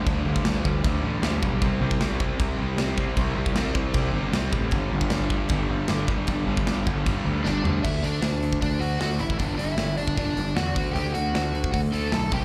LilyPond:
<<
  \new Staff \with { instrumentName = "Overdriven electric guitar" } { \time 4/4 \key d \mixolydian \tempo 4 = 154 r1 | r1 | r1 | r1 |
r2. <d' d''>4 | <e' e''>8 <d' d''>4. <d' d''>8 <fis' fis''>8 <fis' fis''>8 <e' e''>8 | <d' d''>8 <e' e''>4 <d' d''>8 <d' d''>4 <fis' fis''>4 | <g' g''>8 <fis' fis''>4. <fis' fis''>8 <a' a''>8 <a' a''>8 <g' g''>8 | }
  \new Staff \with { instrumentName = "Distorted electric guitar" } { \clef bass \time 4/4 \key d \mixolydian <g, d g>8 <g, d g>8 <g, d g>8 <g, d g>8 <g, d g>8 <g, d g>8 <g, d g>8 <g, d g>8 | <c g c'>8 <c g c'>8 <c g c'>8 <c g c'>8 <c g c'>8 <c g c'>8 <c g c'>8 <c g c'>8 | <c g c'>8 <c g c'>8 <c g c'>8 <c g c'>8 <c g c'>8 <c g c'>8 <c g c'>8 <c g c'>8 | <g, d g>8 <g, d g>8 <g, d g>8 <g, d g>8 <g, d g>8 <g, d g>8 <g, d g>8 <g, d g>8 |
<g, d g>8 <g, d g>8 <g, d g>8 <g, d g>8 <g, d g>8 <g, d g>8 <g, d g>8 <g, d g>8 | <d a d'>8 <d a>8 <d a>8 <d a>8 <d a>8 <d a d'>8 <d a>8 <d a>8 | <g, d g>8 <g, d>8 <g, d>8 <g, d>8 <g, d g>8 <g, d>8 <g, d>8 <d a d'>8 | <d a d'>8 <d a>8 <d a>8 <d a>8 <d a>8 <d a d'>8 <d a>8 <c g c'>8 | }
  \new Staff \with { instrumentName = "Overdriven electric guitar" } { \clef bass \time 4/4 \key d \mixolydian <g, d g>8 <g, d g>8 <g, d g>8 <g, d g>8 <g, d g>8 <g, d g>8 <g, d g>8 <g, d g>8 | <c g c'>8 <c g c'>8 <c g c'>8 <c g c'>8 <c g c'>8 <c g c'>8 <c g c'>8 <c g c'>8 | <c g c'>8 <c g c'>8 <c g c'>8 <c g c'>8 <c g c'>8 <c g c'>8 <c g c'>8 <c g c'>8 | <g, d g>8 <g, d g>8 <g, d g>8 <g, d g>8 <g, d g>8 <g, d g>8 <g, d g>8 <g, d g>8 |
<g, d g>8 <g, d g>8 <g, d g>8 <g, d g>8 <g, d g>8 <g, d g>8 <g, d g>8 <g, d g>8 | r1 | r1 | r1 | }
  \new Staff \with { instrumentName = "Picked electric bass" } { \clef bass \time 4/4 \key d \mixolydian d,8 d,8 d,8 d,8 d,8 a,,8 d,8 b,,8 | c,8 c,8 c,4 c,8 c,8 c,4 | c,8 c,8 c,8 c,8 c,8 g,,8 c,8 a,,8 | g,,8 g,,8 g,,4 g,,8 g,,8 g,,4 |
g,,8 g,,8 g,,8 g,,8 g,,8 d,8 g,,8 d,8 | d,8 d,8 d,4 d,4 d,8 a,,8 | g,,8 g,,8 g,,8 g,,8 g,,8 g,,8 e,8 d,8 | d,8 d,8 d,4 d,4 b,,8 c,8 | }
  \new DrumStaff \with { instrumentName = "Drums" } \drummode { \time 4/4 <cymc bd>8. bd16 <cymc sn>8 bd8 <cymc bd>4 <cymc sn>8 bd8 | <cymc bd>8. bd16 <cymc sn>8 bd8 <cymc bd>4 <cymc sn>8 bd8 | <cymc bd>8. bd16 <cymc sn>8 bd8 <cymc bd>4 <cymc sn>8 bd8 | <cymc bd>8. bd16 <cymc sn>8 bd8 <cymc bd>4 <cymc sn>8 bd8 |
<cymc bd>8. bd16 <cymc sn>8 bd8 <cymc bd>4 sn8 tomfh8 | <cymc bd>8 hho8 <hho sn>8 hho16 bd16 <hho bd>8 hho8 <hho sn>8 hho16 bd16 | <hho bd>8 hho8 <hho sn>8 hho16 bd16 <hho bd>8 hho8 <hho sn>8 <hho bd>8 | hho8 hho8 <hho sn>8 hho16 bd16 <hho bd>8 hho8 <hho sn>8 <hho bd>8 | }
>>